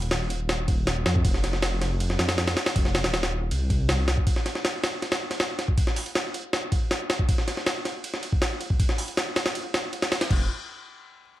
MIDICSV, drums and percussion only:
0, 0, Header, 1, 2, 480
1, 0, Start_track
1, 0, Tempo, 377358
1, 1589, Time_signature, 4, 2, 24, 8
1, 14501, End_track
2, 0, Start_track
2, 0, Title_t, "Drums"
2, 25, Note_on_c, 9, 51, 43
2, 142, Note_off_c, 9, 51, 0
2, 142, Note_on_c, 9, 38, 112
2, 142, Note_on_c, 9, 51, 83
2, 269, Note_off_c, 9, 38, 0
2, 269, Note_off_c, 9, 51, 0
2, 384, Note_on_c, 9, 51, 78
2, 511, Note_off_c, 9, 51, 0
2, 624, Note_on_c, 9, 38, 99
2, 624, Note_on_c, 9, 51, 72
2, 752, Note_off_c, 9, 38, 0
2, 752, Note_off_c, 9, 51, 0
2, 865, Note_on_c, 9, 51, 70
2, 866, Note_on_c, 9, 36, 100
2, 992, Note_off_c, 9, 51, 0
2, 993, Note_off_c, 9, 36, 0
2, 1107, Note_on_c, 9, 38, 99
2, 1107, Note_on_c, 9, 51, 80
2, 1234, Note_off_c, 9, 38, 0
2, 1234, Note_off_c, 9, 51, 0
2, 1346, Note_on_c, 9, 38, 108
2, 1346, Note_on_c, 9, 51, 79
2, 1467, Note_on_c, 9, 36, 97
2, 1473, Note_off_c, 9, 38, 0
2, 1473, Note_off_c, 9, 51, 0
2, 1585, Note_on_c, 9, 51, 90
2, 1587, Note_off_c, 9, 36, 0
2, 1587, Note_on_c, 9, 36, 105
2, 1708, Note_on_c, 9, 38, 47
2, 1712, Note_off_c, 9, 51, 0
2, 1714, Note_off_c, 9, 36, 0
2, 1829, Note_off_c, 9, 38, 0
2, 1829, Note_on_c, 9, 38, 49
2, 1829, Note_on_c, 9, 51, 71
2, 1949, Note_off_c, 9, 38, 0
2, 1949, Note_on_c, 9, 38, 48
2, 1956, Note_off_c, 9, 51, 0
2, 2067, Note_off_c, 9, 38, 0
2, 2067, Note_on_c, 9, 38, 108
2, 2067, Note_on_c, 9, 51, 86
2, 2194, Note_off_c, 9, 38, 0
2, 2194, Note_off_c, 9, 51, 0
2, 2309, Note_on_c, 9, 38, 52
2, 2309, Note_on_c, 9, 51, 71
2, 2436, Note_off_c, 9, 38, 0
2, 2436, Note_off_c, 9, 51, 0
2, 2549, Note_on_c, 9, 51, 81
2, 2671, Note_on_c, 9, 38, 47
2, 2676, Note_off_c, 9, 51, 0
2, 2787, Note_off_c, 9, 38, 0
2, 2787, Note_on_c, 9, 38, 103
2, 2787, Note_on_c, 9, 51, 78
2, 2908, Note_off_c, 9, 38, 0
2, 2908, Note_off_c, 9, 51, 0
2, 2908, Note_on_c, 9, 38, 103
2, 2908, Note_on_c, 9, 51, 80
2, 3027, Note_off_c, 9, 38, 0
2, 3027, Note_off_c, 9, 51, 0
2, 3027, Note_on_c, 9, 38, 100
2, 3027, Note_on_c, 9, 51, 78
2, 3148, Note_off_c, 9, 38, 0
2, 3148, Note_off_c, 9, 51, 0
2, 3148, Note_on_c, 9, 38, 94
2, 3148, Note_on_c, 9, 51, 72
2, 3265, Note_off_c, 9, 38, 0
2, 3265, Note_off_c, 9, 51, 0
2, 3265, Note_on_c, 9, 38, 106
2, 3265, Note_on_c, 9, 51, 79
2, 3387, Note_off_c, 9, 38, 0
2, 3387, Note_off_c, 9, 51, 0
2, 3387, Note_on_c, 9, 38, 111
2, 3387, Note_on_c, 9, 51, 79
2, 3507, Note_off_c, 9, 51, 0
2, 3507, Note_on_c, 9, 36, 113
2, 3507, Note_on_c, 9, 51, 91
2, 3514, Note_off_c, 9, 38, 0
2, 3628, Note_on_c, 9, 38, 55
2, 3634, Note_off_c, 9, 36, 0
2, 3634, Note_off_c, 9, 51, 0
2, 3749, Note_off_c, 9, 38, 0
2, 3749, Note_on_c, 9, 38, 115
2, 3749, Note_on_c, 9, 51, 86
2, 3869, Note_off_c, 9, 38, 0
2, 3869, Note_off_c, 9, 51, 0
2, 3869, Note_on_c, 9, 38, 109
2, 3869, Note_on_c, 9, 51, 81
2, 3989, Note_off_c, 9, 38, 0
2, 3989, Note_off_c, 9, 51, 0
2, 3989, Note_on_c, 9, 38, 98
2, 3989, Note_on_c, 9, 51, 72
2, 4110, Note_off_c, 9, 38, 0
2, 4110, Note_off_c, 9, 51, 0
2, 4110, Note_on_c, 9, 38, 102
2, 4110, Note_on_c, 9, 51, 72
2, 4237, Note_off_c, 9, 38, 0
2, 4237, Note_off_c, 9, 51, 0
2, 4468, Note_on_c, 9, 51, 81
2, 4595, Note_off_c, 9, 51, 0
2, 4708, Note_on_c, 9, 36, 95
2, 4708, Note_on_c, 9, 51, 67
2, 4835, Note_off_c, 9, 36, 0
2, 4835, Note_off_c, 9, 51, 0
2, 4947, Note_on_c, 9, 38, 117
2, 4947, Note_on_c, 9, 51, 83
2, 5074, Note_off_c, 9, 38, 0
2, 5074, Note_off_c, 9, 51, 0
2, 5187, Note_on_c, 9, 38, 101
2, 5187, Note_on_c, 9, 51, 81
2, 5309, Note_on_c, 9, 36, 94
2, 5314, Note_off_c, 9, 38, 0
2, 5314, Note_off_c, 9, 51, 0
2, 5428, Note_off_c, 9, 36, 0
2, 5428, Note_on_c, 9, 36, 110
2, 5428, Note_on_c, 9, 51, 88
2, 5549, Note_on_c, 9, 38, 45
2, 5555, Note_off_c, 9, 36, 0
2, 5555, Note_off_c, 9, 51, 0
2, 5670, Note_off_c, 9, 38, 0
2, 5670, Note_on_c, 9, 38, 51
2, 5670, Note_on_c, 9, 51, 72
2, 5792, Note_off_c, 9, 38, 0
2, 5792, Note_on_c, 9, 38, 51
2, 5797, Note_off_c, 9, 51, 0
2, 5910, Note_off_c, 9, 38, 0
2, 5910, Note_on_c, 9, 38, 109
2, 5910, Note_on_c, 9, 51, 84
2, 6037, Note_off_c, 9, 38, 0
2, 6037, Note_off_c, 9, 51, 0
2, 6150, Note_on_c, 9, 38, 102
2, 6150, Note_on_c, 9, 51, 83
2, 6278, Note_off_c, 9, 38, 0
2, 6278, Note_off_c, 9, 51, 0
2, 6390, Note_on_c, 9, 38, 48
2, 6390, Note_on_c, 9, 51, 58
2, 6510, Note_off_c, 9, 38, 0
2, 6510, Note_off_c, 9, 51, 0
2, 6510, Note_on_c, 9, 38, 105
2, 6510, Note_on_c, 9, 51, 74
2, 6637, Note_off_c, 9, 38, 0
2, 6637, Note_off_c, 9, 51, 0
2, 6752, Note_on_c, 9, 38, 54
2, 6752, Note_on_c, 9, 51, 64
2, 6868, Note_off_c, 9, 38, 0
2, 6868, Note_off_c, 9, 51, 0
2, 6868, Note_on_c, 9, 38, 109
2, 6868, Note_on_c, 9, 51, 75
2, 6996, Note_off_c, 9, 38, 0
2, 6996, Note_off_c, 9, 51, 0
2, 7107, Note_on_c, 9, 38, 55
2, 7107, Note_on_c, 9, 51, 61
2, 7229, Note_on_c, 9, 36, 96
2, 7234, Note_off_c, 9, 38, 0
2, 7234, Note_off_c, 9, 51, 0
2, 7347, Note_off_c, 9, 36, 0
2, 7347, Note_on_c, 9, 36, 117
2, 7347, Note_on_c, 9, 51, 90
2, 7468, Note_on_c, 9, 38, 54
2, 7474, Note_off_c, 9, 36, 0
2, 7474, Note_off_c, 9, 51, 0
2, 7586, Note_on_c, 9, 46, 85
2, 7595, Note_off_c, 9, 38, 0
2, 7709, Note_on_c, 9, 51, 46
2, 7713, Note_off_c, 9, 46, 0
2, 7828, Note_off_c, 9, 51, 0
2, 7828, Note_on_c, 9, 38, 113
2, 7828, Note_on_c, 9, 51, 83
2, 7955, Note_off_c, 9, 38, 0
2, 7955, Note_off_c, 9, 51, 0
2, 8068, Note_on_c, 9, 51, 80
2, 8195, Note_off_c, 9, 51, 0
2, 8308, Note_on_c, 9, 38, 101
2, 8308, Note_on_c, 9, 51, 70
2, 8435, Note_off_c, 9, 38, 0
2, 8435, Note_off_c, 9, 51, 0
2, 8547, Note_on_c, 9, 51, 66
2, 8548, Note_on_c, 9, 36, 97
2, 8674, Note_off_c, 9, 51, 0
2, 8675, Note_off_c, 9, 36, 0
2, 8789, Note_on_c, 9, 38, 103
2, 8789, Note_on_c, 9, 51, 77
2, 8916, Note_off_c, 9, 38, 0
2, 8916, Note_off_c, 9, 51, 0
2, 9028, Note_on_c, 9, 38, 103
2, 9028, Note_on_c, 9, 51, 79
2, 9150, Note_on_c, 9, 36, 96
2, 9155, Note_off_c, 9, 38, 0
2, 9155, Note_off_c, 9, 51, 0
2, 9269, Note_off_c, 9, 36, 0
2, 9269, Note_on_c, 9, 36, 112
2, 9269, Note_on_c, 9, 51, 90
2, 9391, Note_on_c, 9, 38, 45
2, 9396, Note_off_c, 9, 36, 0
2, 9396, Note_off_c, 9, 51, 0
2, 9511, Note_off_c, 9, 38, 0
2, 9511, Note_on_c, 9, 38, 47
2, 9511, Note_on_c, 9, 51, 74
2, 9632, Note_off_c, 9, 38, 0
2, 9632, Note_on_c, 9, 38, 48
2, 9638, Note_off_c, 9, 51, 0
2, 9749, Note_off_c, 9, 38, 0
2, 9749, Note_on_c, 9, 38, 115
2, 9749, Note_on_c, 9, 51, 86
2, 9877, Note_off_c, 9, 38, 0
2, 9877, Note_off_c, 9, 51, 0
2, 9989, Note_on_c, 9, 38, 50
2, 9989, Note_on_c, 9, 51, 68
2, 10116, Note_off_c, 9, 38, 0
2, 10116, Note_off_c, 9, 51, 0
2, 10226, Note_on_c, 9, 51, 83
2, 10349, Note_on_c, 9, 38, 50
2, 10354, Note_off_c, 9, 51, 0
2, 10465, Note_on_c, 9, 51, 66
2, 10476, Note_off_c, 9, 38, 0
2, 10589, Note_on_c, 9, 36, 96
2, 10592, Note_off_c, 9, 51, 0
2, 10706, Note_on_c, 9, 38, 121
2, 10706, Note_on_c, 9, 51, 87
2, 10716, Note_off_c, 9, 36, 0
2, 10834, Note_off_c, 9, 38, 0
2, 10834, Note_off_c, 9, 51, 0
2, 10947, Note_on_c, 9, 51, 70
2, 11070, Note_on_c, 9, 36, 98
2, 11074, Note_off_c, 9, 51, 0
2, 11189, Note_off_c, 9, 36, 0
2, 11189, Note_on_c, 9, 36, 113
2, 11189, Note_on_c, 9, 51, 88
2, 11309, Note_on_c, 9, 38, 53
2, 11316, Note_off_c, 9, 36, 0
2, 11316, Note_off_c, 9, 51, 0
2, 11427, Note_on_c, 9, 46, 82
2, 11436, Note_off_c, 9, 38, 0
2, 11550, Note_on_c, 9, 51, 43
2, 11554, Note_off_c, 9, 46, 0
2, 11669, Note_off_c, 9, 51, 0
2, 11669, Note_on_c, 9, 38, 115
2, 11669, Note_on_c, 9, 51, 85
2, 11796, Note_off_c, 9, 38, 0
2, 11796, Note_off_c, 9, 51, 0
2, 11908, Note_on_c, 9, 38, 105
2, 11908, Note_on_c, 9, 51, 85
2, 12029, Note_off_c, 9, 38, 0
2, 12029, Note_off_c, 9, 51, 0
2, 12029, Note_on_c, 9, 38, 106
2, 12029, Note_on_c, 9, 51, 81
2, 12150, Note_off_c, 9, 51, 0
2, 12150, Note_on_c, 9, 51, 82
2, 12156, Note_off_c, 9, 38, 0
2, 12277, Note_off_c, 9, 51, 0
2, 12390, Note_on_c, 9, 38, 105
2, 12390, Note_on_c, 9, 51, 76
2, 12518, Note_off_c, 9, 38, 0
2, 12518, Note_off_c, 9, 51, 0
2, 12629, Note_on_c, 9, 51, 61
2, 12750, Note_off_c, 9, 51, 0
2, 12750, Note_on_c, 9, 38, 100
2, 12750, Note_on_c, 9, 51, 77
2, 12870, Note_off_c, 9, 38, 0
2, 12870, Note_off_c, 9, 51, 0
2, 12870, Note_on_c, 9, 38, 107
2, 12870, Note_on_c, 9, 51, 83
2, 12989, Note_off_c, 9, 38, 0
2, 12989, Note_off_c, 9, 51, 0
2, 12989, Note_on_c, 9, 38, 107
2, 12989, Note_on_c, 9, 51, 83
2, 13107, Note_on_c, 9, 36, 119
2, 13109, Note_on_c, 9, 49, 88
2, 13116, Note_off_c, 9, 38, 0
2, 13116, Note_off_c, 9, 51, 0
2, 13235, Note_off_c, 9, 36, 0
2, 13237, Note_off_c, 9, 49, 0
2, 14501, End_track
0, 0, End_of_file